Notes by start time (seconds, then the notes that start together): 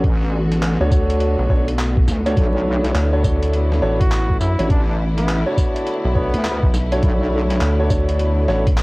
Already playing: A1 D3 A3 B3 F#4
0.04 kick, closed hi-hat
0.52 snare, closed hi-hat
0.62 clap, closed hi-hat
0.80 D2 D4 F#4 A4 C#5
0.91 D4 F#4 A4 C#5, kick, tambourine
1.10 closed hi-hat
1.20 closed hi-hat
1.39 B1
1.49 B1 D4 F#4 A4 C#5, kick
1.68 closed hi-hat
1.79 clap, closed hi-hat
1.97 kick
2.08 D2, snare, tambourine
2.26 D4 F#4 A4 C#5, closed hi-hat
2.37 B1 E4, kick, closed hi-hat
2.84 snare, closed hi-hat
2.95 D2, clap, closed hi-hat
3.13 D4 F#4 A4 C#5
3.24 D4 F#4 A4 C#5, kick, tambourine
3.43 closed hi-hat
3.54 closed hi-hat
3.72 snare
3.82 A1 D4 F#4 A4 C#5
4.01 F#4, kick, closed hi-hat
4.12 clap, closed hi-hat
4.30 kick
4.40 F#2 E4, tambourine
4.59 A1 D4 F#4 A4 C#5, closed hi-hat
4.70 D4, kick, closed hi-hat
4.89 D4
5.17 B3, snare, closed hi-hat
5.28 clap, closed hi-hat
5.46 D4 F#4 A4 C#5
5.57 D4 F#4 A4 C#5, kick, tambourine
5.76 closed hi-hat
5.87 closed hi-hat
6.05 B1
6.15 B3 D4 F#4 A4 C#5, kick
6.34 D2, closed hi-hat
6.45 clap, closed hi-hat
6.63 B1, kick
6.74 snare, tambourine
6.92 D4 F#4 A4 C#5, closed hi-hat
7.03 B1, kick, closed hi-hat
7.50 snare, closed hi-hat
7.61 D2, clap, closed hi-hat
7.79 D4 F#4 A4 C#5
7.90 D4 F#4 A4 C#5, kick, tambourine
8.09 closed hi-hat
8.19 closed hi-hat
8.48 A1 D4 F#4 A4 C#5, snare
8.67 kick, closed hi-hat
8.77 clap, closed hi-hat